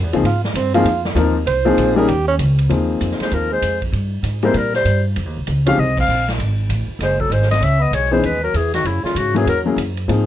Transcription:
0.04 E2
0.13 C#2 F3 A#3 C4 D#4 G#4, ride
0.23 G#2 F4, ride
0.43 G#3, snare
0.54 G2 C4, hi-hat pedal, ride
0.74 F3 A#3 C4 D#4 F4 G#4, ride
0.84 F2, ride
1.05 snare
1.15 D#2 F3 A#3 C4 D#4 A#4, hi-hat pedal, ride
1.46 C2 C5, ride
1.65 F3 A#3 C4 D#4 G#4
1.77 A#1, hi-hat pedal, ride
1.96 G3 A#3 C#4 D#4 G#4 A#4
2.08 D#2 G4, ride
2.28 C#4
2.39 C#2, hi-hat pedal, ride
2.58 ride
2.69 D#2 F3 A#3 C4 D#4 G#4, ride
3.01 F2, hi-hat pedal, ride
3.12 snare
3.20 G#3 C5, muted upright bass stroke, snare, ride
3.31 D#2 F3 A#4, ride
3.52 G#3 C5
3.62 F2, hi-hat pedal, ride
3.82 kick, ride
3.92 G2, ride
4.23 G#2, hi-hat pedal, ride
4.42 G3 G#3 A#3 C4 E4 A#4 C5, ride
4.54 A#2 G3 A#4, ride
4.74 G3 C5, snare
4.85 G2, hi-hat pedal, ride
5.16 F2, ride
5.26 D#2
5.37 C2
5.47 C#2, hi-hat pedal, ride
5.66 F3 G#3 C4 C#4 D#4 G4 F5, ride
5.78 C2 C4 D#5
5.97 C4 F5, kick, crash
6.08 A#1, hi-hat pedal
6.28 snare, ride
6.38 G#1, ride
6.69 A1, hi-hat pedal, ride
6.88 muted upright bass stroke
6.99 F#1 G#3 C5, snare, ride
7.20 F#3 A4, kick
7.30 G#1 G#3 C5, hi-hat pedal, ride
7.42 snare
7.50 C4 D#5, snare, ride
7.60 C#2 C#4 E5, ride
7.79 B3 D#5
7.91 B1 G#3 C#5, hi-hat pedal, ride
8.11 E3 G#3 B3 C#4 D#4 G#4 C5
8.22 D#2 G#3 B4, ride
8.43 F#3 A#4
8.54 E2 E3 G#4, hi-hat pedal, ride
8.74 D#3 F#4, snare, ride
8.84 F#2 C#3 E4, ride
9.03 C#3 F4, muted upright bass stroke, snare
9.15 G#2 C#3 F#4, hi-hat pedal, ride
9.35 E3 F#3 A#3 C#4 E4 G#4, ride
9.46 E2 F#3 A#4, ride
9.66 F#3 A#3 C#4 E4 G#4
9.76 F#2, hi-hat pedal, ride
9.97 ride
10.08 G#2 F3 A#3 C4 D#4 G#4, ride

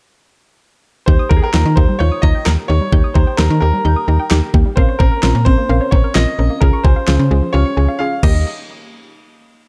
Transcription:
1.06 D#2 A#3 D#4 G4 C5 G6, kick
1.19 D#6
1.29 D#2 A#3 D#4 G4 A#4 A#5, kick
1.36 G#4
1.42 A#4 G5
1.54 D#2 A#3 D#4 F4 G4, snare
1.66 D#3 D#4
1.76 D#2 A#3 D#4 G4 C5, kick
1.89 G3
1.99 D#2 A#3 D#4 F4 C#5 G6
2.12 D#6
2.22 D#2 A#3 D#4 F4 D#5 A#5, kick
2.35 G5
2.45 D#2 A#3 D#4 G4 A#4, snare
2.68 D#2 A#3 D#4 G4 C#5
2.81 G3
2.92 D#2 A#3 D#4 G4 G6, kick
3.04 D#6
3.14 D#2 A#3 D#4 G4 C5 A#5, kick
3.27 G5
3.37 D#2 A#3 D#4 G4 A#4, snare
3.50 D#3 D#4
3.60 D#2 A#3 D#4 G4 A#4
3.73 G3
3.85 D#2 A#3 D#4 G4 G6
3.96 D#6
4.08 D#2 A#3 D#4 G4 A#5
4.19 G5
4.31 D#2 A#3 D#4 G4, snare
4.54 D#2 A#3 D#4 G4, kick
4.66 G3
4.76 A#1 C4 C#4 A#4 C5 F5, kick
4.89 C#5
4.99 A#1 C4 C#4 A#4 C5, kick
5.12 A#4
5.23 A#1 C4 C#4 F4 A#4, snare
5.35 A#2 C#4
5.45 A#1 C4 C#4 A#4 C5, kick
5.58 A#3
5.69 A#1 C4 C#4 A#4 F5
5.81 C#5
5.91 A#1 C4 C#4 A#4 C5 C#5, kick
6.04 A#4
6.14 A#1 C4 C#4 F4 A#4 D#5, snare
6.39 A#1 C4 C#4 A#4
6.50 A#3
6.61 C#2 C#4 F4 G#4 A#4 F6, kick
6.73 C#6
6.84 C#2 C#4 F4 G4 C5 G#5, kick
6.96 F5
7.08 C#2 C#4 F4 G#4, snare
7.19 C#3 C#4
7.31 C#2 G#3 C#4 F4 G#4
7.42 F3
7.53 C#2 C#4 F4 G4 C#5 F6
7.65 C#6
7.77 C#2 C#4 F4 G#4 G#5
7.88 F5
7.99 C#4 F4 G#4 F5
8.23 D#2 G3 A#3 D#4 G4 D#5, kick, crash

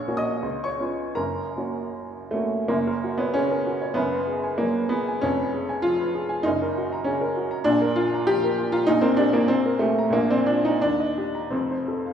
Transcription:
Already playing: A#1 C#5 C#6
0.08 A#3 C#4 F#4
0.17 D#5 D#6
0.43 C#2
0.64 C#5 C#6
0.80 B3 C#4 F4
1.15 F#1 F#2 A#4 A#5
1.57 A#3 C#4 F#4
2.31 A3 A#3 C#4 F#4
2.68 F#1 F#2 A#3
2.87 A#4
3.04 F#4
3.18 B3 C#5
3.34 C#3 C#4
3.52 A#4
3.66 F#4
3.82 C#5
3.94 F#1 F#2 B3
4.12 B4
4.27 G#4
4.43 G#5
4.58 F#3 A#3
4.76 B4
4.89 B3 G#4
5.08 G#5
5.21 F1 F2 C#4
5.39 B4
5.54 G#4
5.69 G#5
5.82 F3 F4
6.00 B4
6.15 G#4
6.29 G#5
6.43 F#1 F#2 D#4
6.62 A#4
6.78 F#4
6.93 A#5
7.04 C#3 C#4
7.21 A#4
7.37 F#4
7.51 A#5
7.64 A#1 A#2 D4
7.82 A#4
7.96 F4
8.14 A#5
8.27 F3 G4
8.44 A#4
8.59 F4
8.72 F4 A#5
8.87 A#1 A#2 D#4
9.01 C4 A#4
9.17 D4 G4
9.33 A#3 A#5
9.48 A#3 C4
9.66 A#4
9.79 A3 G4
9.99 A#5
10.10 A#1 A#2 A#3
10.30 C4 D5
10.46 D4 F4
10.65 D#4 A#5
10.82 D#2 D4
11.00 D#5
11.18 G4
11.35 A#5
11.50 F1 F2 C4
11.71 C5
11.88 A4
12.06 F5

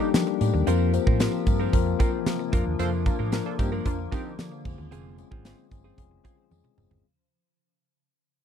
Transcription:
Already playing: F3 G3 A#3 D4 D#4 G4 A4 A#4
0.01 muted clean electric guitar stroke
0.14 F3 G3 A#3 D4 D#4 G4, muted clean electric guitar stroke, snare, closed hi-hat, tambourine
0.27 muted clean electric guitar stroke, tambourine
0.40 A2 G3 A#3 D4 D#4 G4, closed hi-hat, tambourine
0.54 D#2, muted clean electric guitar stroke
0.67 F2 C3 F3 A#3 C4 F4 A#4, closed hi-hat, tambourine
0.93 F3 A#3 C4 F4 C5, muted clean electric guitar stroke, closed hi-hat, tambourine
1.07 A2 C4 F4 A#4, kick, tambourine
1.20 F3 A#3 C4 F4 A#4, snare, closed hi-hat, tambourine
1.33 muted clean electric guitar stroke
1.47 G2 F3 A#3 C4 F4 A#4, muted clean electric guitar stroke, kick, closed hi-hat, tambourine
1.60 C4 F4 A#4, tambourine
1.73 F2 F3 A#3 C4 F4 A#4, kick, closed hi-hat, tambourine
1.86 muted clean electric guitar stroke
1.99 F3 A#3 C4 F4 A#4, kick, closed hi-hat, tambourine
2.13 muted clean electric guitar stroke
2.26 F3 A#3 C4 F4 A#4, snare, closed hi-hat, tambourine
2.39 muted clean electric guitar stroke, tambourine
2.53 F2 D3 F3 A#3 D4 F4 A#4, kick, closed hi-hat, tambourine
2.66 D#2, muted clean electric guitar stroke
2.79 F2 D4 F4 A4 A#4 C5, closed hi-hat, tambourine
3.06 F3 A#3 D4 F4 A#4, kick, closed hi-hat, tambourine
3.19 A2 D4 F4 A#4
3.32 F3 A#3 D4 F4 A#4, snare, closed hi-hat, tambourine
3.46 D4 F4 A4, muted clean electric guitar stroke
3.58 G2 F3 A#3 C4 D4 D#4 F4 G4 A#4, muted clean electric guitar stroke, kick, closed hi-hat, tambourine
3.72 D4 F4 A#4, tambourine
3.85 F2 F3 A#3 D4 F4 A#4, kick, closed hi-hat, tambourine
3.99 muted clean electric guitar stroke
4.12 C4 D4 D#4 F4 G4 A#4, kick, closed hi-hat, tambourine
4.25 G4, muted clean electric guitar stroke
4.38 F3 A4 D5, muted clean electric guitar stroke, snare, closed hi-hat, tambourine
4.52 C5 F5, muted clean electric guitar stroke, tambourine
4.65 F2 C#3 G#3 C4 C#4 F4 G#4 C5, kick, tambourine, crash
4.78 D#2, muted clean electric guitar stroke
4.91 F1 C4 F4 G#4, closed hi-hat, tambourine
5.18 G#3 C4 C#4 F4 G#4, muted clean electric guitar stroke, closed hi-hat, tambourine
5.31 G#1 C4 F4 G#4, kick
5.44 G#3 C4 C#4 F4 G#4, snare, closed hi-hat, tambourine
5.58 muted clean electric guitar stroke
5.71 G1 G#3 C4 C#4 F4 G#4, muted clean electric guitar stroke, kick, closed hi-hat, tambourine
5.84 C4 F4 G#4, tambourine
5.98 F1 G#3 C4 C#4 F4 G#4, kick, closed hi-hat, tambourine
6.11 muted clean electric guitar stroke
6.24 G#3 C4 C#4 F4 G#4, kick, closed hi-hat, tambourine
6.38 muted clean electric guitar stroke
6.51 F2 G#3 C4 C#4 F4 G#4, muted clean electric guitar stroke, high tom, tambourine
6.64 muted clean electric guitar stroke, mid tom, tambourine
6.77 F1 G#3 C4 C#4 F4 G#4, mid tom, tambourine
6.91 G1, muted clean electric guitar stroke, floor tom

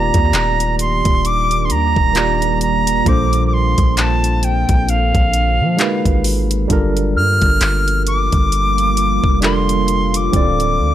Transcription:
Already playing: D#1 D#3 G3 A#3 D4 F4 G4 D5 A#5
0.14 D#2, kick, closed hi-hat
0.33 D#1, clap, closed hi-hat
0.60 closed hi-hat
0.79 C6, closed hi-hat
1.05 D#1, kick, closed hi-hat
1.24 F4 D6, closed hi-hat
1.51 closed hi-hat
1.65 C6
1.70 D#2 A#5, closed hi-hat
1.96 D#1, kick
2.13 D#3 A#3 F4 G4, clap, closed hi-hat
2.18 D5
2.42 closed hi-hat
2.61 A#5, closed hi-hat
2.87 closed hi-hat
3.04 A#1 A#2 D3 A#3 C4 D4 A4 D6, kick, closed hi-hat
3.09 C5
3.33 closed hi-hat
3.47 D6
3.53 C6
3.78 A#1, kick, closed hi-hat
3.97 A5, clap, closed hi-hat
4.24 closed hi-hat
4.43 G5, closed hi-hat
4.69 A#1, kick, closed hi-hat
4.89 F5, closed hi-hat
5.15 A#1, kick, closed hi-hat
5.34 closed hi-hat
5.60 F3
5.77 G#3 D#4 F#4 A#4, clap, closed hi-hat
5.82 B4
6.05 G#1, kick, closed hi-hat
6.24 open hi-hat
6.51 closed hi-hat
6.68 G1 D3 F3 G3 A#3 D4 F4 A4, kick, closed hi-hat
6.73 A#4
6.97 closed hi-hat
7.16 G2 F6
7.42 G1, kick, closed hi-hat
7.61 G1, clap, closed hi-hat
7.88 closed hi-hat
8.07 D6, closed hi-hat
8.32 G1, kick, closed hi-hat
8.52 closed hi-hat
8.78 closed hi-hat
8.97 closed hi-hat
9.24 F1, kick
9.41 G3 D4 F4 A4 C6, clap, closed hi-hat
9.45 A#4
9.69 closed hi-hat
9.88 closed hi-hat
10.14 D6, closed hi-hat
10.32 D1 D3 A3 C4 E4 A4, kick, closed hi-hat
10.36 D5
10.40 F4
10.60 closed hi-hat
10.79 D2

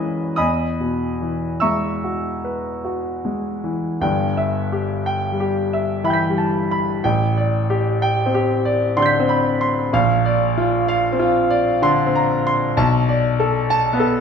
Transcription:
Already playing: F#2 E3 G#3 C#4 A#4 D#5 G#5 A#5 B5 D#6 F#6 A#6
0.36 E2 D#5 G#5 B5 D#6
0.80 B2
1.22 E3
1.60 G#3 E5 A#5 C#6 E6
2.04 F#4
2.45 B4
2.85 F#4
3.25 G#3
3.64 E3
4.01 G1 G2 G5
4.37 E5
4.72 G4
5.06 G5
5.32 G3
5.40 G4
5.73 E5
6.04 E3 E5 G5 B5
6.10 G6 B6
6.30 G3
6.38 A5
6.71 B5
7.04 A1 G5
7.37 D5
7.70 G4
8.02 G5
8.26 C4
8.35 G4
8.65 D5
8.97 D3 D5 C6
9.02 G6 B6
9.20 C4
9.29 B5
9.61 C6
9.93 A#1 F5
10.25 D5
10.58 F4
10.88 F5
11.12 C4
11.19 F4
11.50 D5
11.82 D3 C6
12.06 C4
12.15 A#5
12.47 C6
12.77 B1 A5
13.09 D5
13.40 A4
13.70 A5
13.93 B3
14.00 A4

